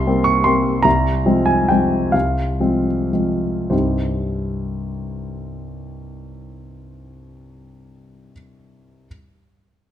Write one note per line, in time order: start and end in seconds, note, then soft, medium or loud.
0.00 0.85 C2 soft
0.00 0.26 C6 medium
0.07 0.42 G3 soft
0.07 0.42 A#3 soft
0.07 0.42 C4 soft
0.24 0.45 C#6 medium
0.44 0.81 G3 soft
0.44 0.81 A#3 soft
0.44 0.81 C4 soft
0.44 0.84 C6 medium
0.83 1.24 C2 soft
0.83 1.46 A#5 medium
1.26 1.66 F3 soft
1.26 1.66 G#3 soft
1.26 1.66 C4 soft
1.46 1.69 G#5 medium
1.69 2.10 F3 soft
1.69 2.10 G#3 soft
1.69 2.10 C4 soft
1.69 2.13 G5 medium
2.12 2.58 C2 soft
2.12 2.84 F5 soft
2.60 3.09 F3 soft
2.60 3.09 G#3 soft
2.60 3.09 C4 soft
3.13 3.68 F3 soft
3.13 3.68 G#3 soft
3.13 3.68 C4 soft
3.70 8.32 C2 soft
3.70 8.33 G2 soft
3.70 8.33 G3 soft
3.70 8.33 C4 soft
3.70 8.34 D#4 soft
3.70 8.33 G4 soft
3.70 8.32 C5 soft